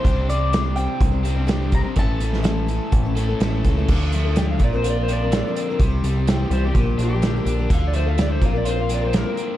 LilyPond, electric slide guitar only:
\new Staff \with { instrumentName = "Electric slide guitar" } { \time 4/4 \key d \minor \tempo 4 = 126 r1 | r1 | r4 g''16 f''16 d''16 c''16 d''16 c''16 d''4 r8 | r4. c''16 g'8. g'4 r8 |
f''16 d''16 c''16 f''16 d''16 c''16 f''16 d''16 c''16 f''16 d''16 c''16 bes'8 r8 | }